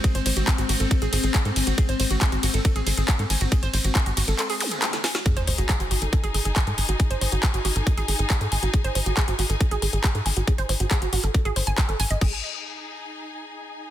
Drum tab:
CC |----------------|----------------|----------------|----------------|
RD |x-x-x-x-x-x-x-x-|x-x-x-x-x-x-x-x-|x-x-x-x-x-x-x-x-|----------------|
HH |xxoxxxoxxxoxxxox|xxoxxxoxxxoxxxox|xxoxxxoxxooxxxox|xxoxxxoxxxoxxxox|
CP |----x-------x---|----x-------x---|----x---x---x---|----x-------x---|
SD |----------------|----------------|-------------ooo|----------------|
BD |o---o---o---o---|o---o---o---o---|o---o-----------|o---o---o---o---|

CC |----------------|----------------|----------------|x---------------|
RD |----------------|----------------|----------------|----------------|
HH |xxoxxxoxxxoxxxox|xxoxxxoxxxoxxxox|xxoxxxoxxxoxxxox|----------------|
CP |----x-------x---|----x-------x---|----x-------x---|----------------|
SD |----------------|----------------|----------------|----------------|
BD |o---o---o---o---|o---o---o---o---|o---o---o---o---|o---------------|